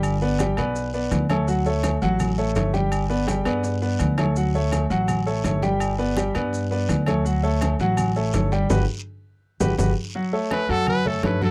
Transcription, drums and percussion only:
0.03 high conga, low agogo, long guiro, maracas
0.21 high conga, maracas
0.39 high conga, low timbale, low agogo, short guiro, maracas
0.57 low agogo, short guiro, maracas
0.76 high conga, long guiro, maracas
0.94 high conga, maracas
1.11 high conga, low timbale, low agogo, short guiro, maracas
1.29 high conga, low agogo, short guiro, maracas
1.48 high conga, long guiro, maracas
1.66 high conga, maracas
1.83 high conga, low timbale, low agogo, short guiro, maracas
2.02 high conga, short guiro, maracas
2.20 high conga, low conga, low agogo, long guiro, maracas
2.38 high conga, maracas
2.55 high conga, low timbale, low agogo, short guiro, maracas
2.74 high conga, short guiro, maracas
2.92 high conga, low agogo, long guiro, maracas
3.10 high conga, maracas
3.28 high conga, high timbale, low agogo, short guiro, maracas
3.45 high conga, high timbale, low agogo, short guiro, maracas
3.63 high conga, high timbale, long guiro, maracas
3.82 high conga, maracas
3.99 high conga, low timbale, low agogo, short guiro, maracas
4.18 high conga, low timbale, low agogo, short guiro, maracas
4.36 high conga, long guiro, maracas
4.55 high conga, maracas
4.72 high conga, low timbale, low agogo, short guiro, maracas
4.91 high conga, short guiro, maracas
5.08 high conga, low conga, low agogo, long guiro, maracas
5.27 high conga, maracas
5.44 high conga, low timbale, low agogo, short guiro, maracas
5.62 high conga, short guiro, maracas
5.80 high conga, low agogo, long guiro, maracas
5.99 high conga, maracas
6.17 high conga, low timbale, low agogo, short guiro, maracas
6.35 high conga, low agogo, short guiro, maracas
6.53 high conga, long guiro, maracas
6.71 high conga, maracas
6.89 high conga, low timbale, low agogo, short guiro, maracas
7.06 high conga, low agogo, short guiro, maracas
7.26 long guiro, maracas
7.44 high conga, maracas
7.61 high conga, low timbale, low agogo, short guiro, maracas
7.80 high conga, short guiro, maracas
7.97 high conga, low conga, low agogo, long guiro, maracas
8.16 high conga, maracas
8.33 high conga, low timbale, low agogo, short guiro, maracas
8.52 short guiro, maracas
8.70 high conga, high timbale, long guiro, maracas
9.61 high conga, high timbale, long guiro, maracas
9.78 high conga, high timbale, long guiro, maracas
10.15 high conga
10.33 high conga
10.51 high conga, low timbale, low agogo, short guiro
10.69 high conga, short guiro
10.87 high conga, low conga, low agogo, long guiro
11.06 high conga, low conga
11.23 high conga, low timbale, low agogo, short guiro
11.42 high conga, short guiro

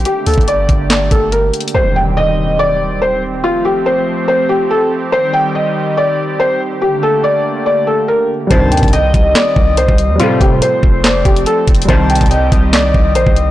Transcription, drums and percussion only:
0.05 closed hi-hat
0.26 closed hi-hat, open hi-hat
0.34 closed hi-hat
0.38 kick, closed hi-hat
0.48 closed hi-hat
0.69 kick, closed hi-hat
0.90 snare, clap, closed hi-hat
1.11 kick, closed hi-hat
1.32 closed hi-hat
1.54 closed hi-hat
1.61 closed hi-hat
1.68 closed hi-hat
8.51 kick, closed hi-hat
8.72 closed hi-hat
8.77 closed hi-hat
8.83 kick, closed hi-hat
8.88 closed hi-hat
8.93 closed hi-hat
9.14 kick, closed hi-hat
9.35 snare, clap, closed hi-hat
9.56 kick
9.77 closed hi-hat
9.88 kick
9.98 closed hi-hat
10.20 closed hi-hat
10.41 kick, closed hi-hat
10.62 closed hi-hat
10.83 kick
11.04 snare, clap, closed hi-hat
11.25 kick, closed hi-hat
11.36 closed hi-hat
11.46 closed hi-hat
11.68 kick, closed hi-hat
11.75 closed hi-hat
11.82 closed hi-hat
11.89 kick, closed hi-hat
12.10 closed hi-hat
12.15 closed hi-hat
12.21 kick, closed hi-hat
12.26 closed hi-hat
12.31 closed hi-hat
12.52 kick, closed hi-hat
12.73 snare, clap, closed hi-hat
12.94 kick
13.15 closed hi-hat
13.27 kick
13.36 closed hi-hat

